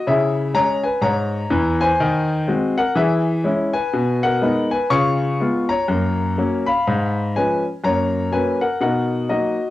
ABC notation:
X:1
M:4/4
L:1/8
Q:"Swing" 1/4=124
K:C#dor
V:1 name="Grand piano"
[Ge]2 [ca] [Bg] [ca]3 [=cg]- | [=cg]3 [Af] [Ge]2 z [Bg]- | [K:F#] [Bg] [Af]2 [Bg] [ec']3 [ca]- | [ca]3 [eb]3 [Bg] z |
[ca]2 [Bg] [Af] [Af]2 [Fd]2 |]
V:2 name="Grand piano"
[C,E]2 [G,CG]2 G,,2 [E,,E,]2 | D,2 [G,^B,F]2 E,2 [G,CE]2 | [K:F#] B,,2 [G,B,D]2 [C,E]2 [G,B,E]2 | [F,,A,]2 [F,A,C]2 G,,2 [E,G,C]2 |
[F,,A,]2 [F,A,C]2 [B,,D]2 [F,A,D]2 |]